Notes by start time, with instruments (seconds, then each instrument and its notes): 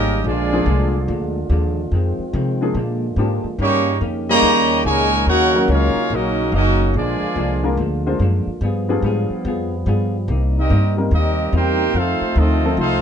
Already playing: upright bass G#1, trombone section C#3 G3 A#3 D#4, hollow-body jazz guitar D#3 A#3 C#4 G4, trumpet section C#4 G4 A#4 D#5
0.24 upright bass A#1, hollow-body jazz guitar A#2 F3 G#3, trombone section D3 F3 G#3 D4 F4, trumpet section A#3 F4 G#4 D5
0.28 hollow-body jazz guitar D4
0.52 grand piano F3 G#3 A#3 D4 G#4
0.66 upright bass C2, hollow-body jazz guitar A#2 F3 G#3 D4
1.08 upright bass D2, hollow-body jazz guitar A#2 F3 G#3 D4
1.50 upright bass D#2, hollow-body jazz guitar A#2 F3 G#3 D4
1.92 upright bass F2, hollow-body jazz guitar F2 D#3 G#3 C4, trombone section D#3 C4
2.19 muted upright bass stroke
2.33 hollow-body jazz guitar F2 D#3 G#3 C4, upright bass C3
2.61 grand piano F3 G#3 A#3 D4 G#4
2.74 upright bass A#2, hollow-body jazz guitar A#2 F3 G#3, trombone section D3 G#3 A#3
2.79 hollow-body jazz guitar D4
3.16 upright bass G#2, hollow-body jazz guitar A#2 F3 G#3 D4, grand piano F3 G#3 A#3 D4 G4
3.44 muted upright bass stroke
3.59 upright bass G2, trombone section C#3 D#3 G3 A#3 C#4 D#4, hollow-body jazz guitar D#3 A#3 C#4 G4, trumpet section A#3 D#4 G4 C#5
4.01 upright bass F2, hollow-body jazz guitar D#3 A#3 C#4 G4
4.29 trombone section C#3 G3 A#3, grand piano G3 A#3 C#4 D#4 A#4, trumpet section G4 C#5 D#5 A#5
4.42 upright bass D#2, hollow-body jazz guitar D#3 A#3 C#4 G4
4.85 upright bass C#2, trombone section A#2 C#3 G#3, hollow-body jazz guitar D#3 A#3 C#4 G4, trumpet section D#4 A#4 C#5 G#5
5.26 upright bass D#2, hollow-body jazz guitar D#3 A#3 C#4 F#4, trombone section F#3 A#3 C#4 F#4, trumpet section D#4 A#4 C#5 F#5
5.54 grand piano F#3 A#3 C#4 D#4 A#4
5.68 upright bass C#2, hollow-body jazz guitar D#3 A#3 C#4 F#4, trombone section A#3 C#4 F4, trumpet section D#4 A#4 C#5 F5
5.96 muted upright bass stroke
6.10 upright bass A#1, hollow-body jazz guitar D#3 A#3 C#4 F#4, trombone section F#3 A#3 D#4, trumpet section C#4 F#4 D#5
6.14 trumpet section A#4
6.52 upright bass F#1, hollow-body jazz guitar D#3 A#3 C#4 F#4, trombone section F#3 A#3 D#4, trumpet section C#4 F#4 A#4 D#5
6.94 upright bass A#1, hollow-body jazz guitar A#2 F3 G#3 D4, trombone section D3 F3 G#3 D4 F4, trumpet section A#3 F4 G#4 D5
7.21 muted upright bass stroke
7.36 upright bass C2, hollow-body jazz guitar A#2 F3 G#3 D4
7.63 grand piano G#3 A#3 D4 F4 A#4
7.77 upright bass D2, hollow-body jazz guitar A#2 F3 G#3
7.82 hollow-body jazz guitar D4
8.06 grand piano G#3 A#3 D4 F4 C5
8.19 upright bass F#2, hollow-body jazz guitar A#2 F3 G#3 D4
8.47 muted upright bass stroke
8.61 upright bass G2, trombone section F3 G3 B3, hollow-body jazz guitar G3 B3 F4
8.65 hollow-body jazz guitar G#4
8.89 grand piano G3 B3 D4 F4 G#4
9.02 upright bass G#2, hollow-body jazz guitar G3 B3 F4
9.07 hollow-body jazz guitar G#4
9.30 muted upright bass stroke
9.45 upright bass F2, hollow-body jazz guitar G3 B3 F4 G#4
9.86 upright bass G2, hollow-body jazz guitar G3 B3 F4 G#4
10.28 upright bass C2, hollow-body jazz guitar C3 G3 A#3 D#4, trombone section D#3 A#3 C4
10.57 trombone section G3 A#3 D#4, trumpet section C4 G4 A#4 D#5
10.69 upright bass G2, hollow-body jazz guitar C3 G3 A#3 D#4
10.97 grand piano G3 A#3 C4 D#4 A#4
11.11 upright bass D#2, hollow-body jazz guitar C3 G3 A#3 D#4, trombone section G3 A#3 D#4, trumpet section C4 G4 A#4 D#5
11.52 upright bass E2, hollow-body jazz guitar C3 G3 A#3 D#4, trombone section A#3 D#4 G4, trumpet section C5 G5
11.56 trumpet section D#4 A#4
11.94 upright bass F2, hollow-body jazz guitar F2 D#3 A3 C4, trombone section A3 C4 D#4 F4, trumpet section D#4 A4 C5 F5
12.21 muted upright bass stroke
12.36 upright bass D2, hollow-body jazz guitar F2 D#3 A3 C4, trombone section A3 C4 D#4, trumpet section C4 F4 A4 D#5
12.64 grand piano F3 A3 C4 D#4 A4
12.77 upright bass C2, hollow-body jazz guitar F2 D#3 A3, trombone section A3 C4 F4, trumpet section D#4 A4 C5 F5
12.81 hollow-body jazz guitar C4